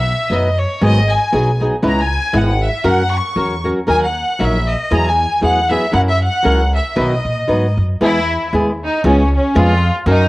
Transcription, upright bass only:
0.00 0.12 B1 medium
0.30 0.64 F#2 medium
0.81 1.15 G#1 medium
1.33 1.66 B1 medium
1.83 2.16 C#2 medium
2.34 2.67 G#1 loud
2.84 3.18 F#2 loud
3.36 3.70 E2 medium
3.88 4.22 D#2 medium
4.40 4.74 A#1 medium
4.91 5.24 E2 loud
5.43 5.76 E2 medium
5.93 6.27 F#2 loud
6.45 6.78 C#2 medium
6.97 7.15 B1 medium
7.25 7.46 A#2 medium
7.49 7.74 G#2 medium
7.77 7.99 F#2 medium
8.01 8.35 E2 medium
8.53 8.87 D#2 medium
9.04 9.38 C#2 loud
9.56 9.89 F2 loud
10.06 10.29 F#2 loud

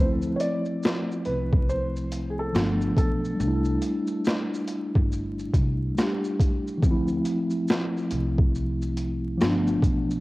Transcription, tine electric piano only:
0.00 2.48 F3 medium
0.00 2.50 A3 medium
0.00 2.52 C4 medium
0.05 2.54 E4 medium
2.53 3.39 F3 medium
2.53 3.38 A3 medium
2.57 3.41 B3 medium
2.57 3.42 D4 medium
3.34 5.90 G3 medium
3.39 5.92 A3 medium
3.43 5.95 D4 medium
3.48 5.97 E4 medium
5.95 6.82 G3 medium
5.95 6.81 A3 medium
5.99 6.84 D4 medium
5.99 6.85 G4 medium
6.77 6.88 E3 medium
6.82 9.36 F3 medium
6.82 9.35 A3 medium
6.86 9.38 C4 medium
6.91 9.40 E4 medium
9.37 10.20 F3 medium
9.37 10.20 A3 medium
9.42 10.20 B3 medium
9.42 10.20 D4 medium

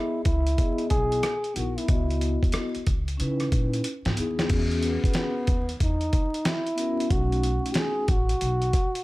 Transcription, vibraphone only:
0.00 0.18 B3 medium
0.00 0.20 E4 medium
0.00 0.24 G#4 medium
0.00 0.19 D#5 medium
0.56 1.24 B3 medium
0.56 1.25 E4 medium
0.56 1.26 G#4 medium
0.56 1.25 D#5 medium
1.54 1.80 B3 medium
1.54 1.81 D#4 medium
1.54 1.81 E4 medium
1.54 1.82 A#4 medium
1.86 2.79 B3 medium
1.86 2.80 E4 medium
1.86 2.80 D#5 medium
1.90 2.81 F#4 medium
3.17 3.85 C#4 medium
3.17 3.85 D#4 medium
3.17 3.86 E4 medium
3.17 3.87 B4 medium
4.14 4.41 B3 medium
4.14 4.42 D#4 medium
4.14 4.42 E4 medium
4.19 4.43 G#4 medium
4.47 5.40 B3 medium
4.47 5.40 C#4 medium
4.47 5.41 F#4 medium
4.47 5.41 G#4 medium
6.75 7.02 B3 medium
6.75 7.03 C#4 medium
6.75 7.03 F#4 medium
6.80 7.04 A#4 medium
7.08 8.00 A3 medium
7.08 8.01 C#4 medium
7.08 8.02 D#4 medium
7.08 8.02 F#4 medium

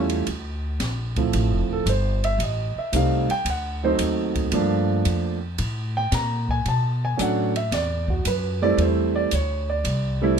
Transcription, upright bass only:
0.00 0.26 E2 loud
0.27 0.79 D2 medium
0.80 1.32 A#1 medium
1.34 1.51 A1 medium
1.51 1.68 F1 medium
1.69 1.85 D1 medium
1.86 2.38 G1 medium
2.38 2.73 A1 medium
2.76 muted upright bass stroke soft
2.92 3.27 C2 medium
3.30 muted upright bass stroke soft
3.45 3.97 D2 medium
3.99 4.51 D#2 medium
4.52 5.04 G2 medium
5.05 5.57 F2 medium
5.59 6.10 A2 medium
6.12 6.64 A#2 medium
6.66 7.17 B2 medium
7.19 7.70 A2 medium
7.71 8.23 E2 medium
8.25 8.77 F#2 medium
8.78 9.29 E2 medium
9.32 9.83 D2 medium
9.84 10.36 C2 medium

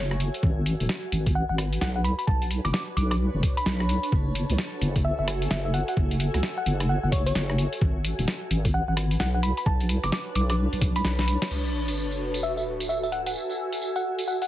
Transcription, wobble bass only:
0.00 0.29 F#1 loud
0.43 0.75 G#1 loud
0.80 0.87 D#1 medium
1.12 1.45 G#1 loud
1.50 1.78 G#1 medium
1.81 2.14 B1 loud
2.28 2.60 B1 medium
2.65 2.72 F#1 medium
2.97 3.29 B1 loud
3.34 3.41 F#1 medium
3.66 3.98 B1 medium
4.12 4.45 F#1 loud
4.50 4.56 C#2 medium
4.81 5.14 F#1 loud
5.19 5.47 F#1 medium
5.51 5.83 F#1 loud
5.97 6.29 F#1 medium
6.34 6.41 C#2 medium
6.66 6.98 F#1 loud
7.03 7.32 F#1 medium
7.35 7.68 F#1 loud
7.81 8.14 G#1 loud
8.19 8.26 D#1 medium
8.51 8.83 G#1 medium
8.88 9.17 G#1 medium
9.20 9.52 B1 loud
9.66 9.98 B1 loud
10.03 10.10 F#1 medium
10.35 10.68 B1 loud
10.73 11.01 B1 medium
11.04 11.37 B1 loud

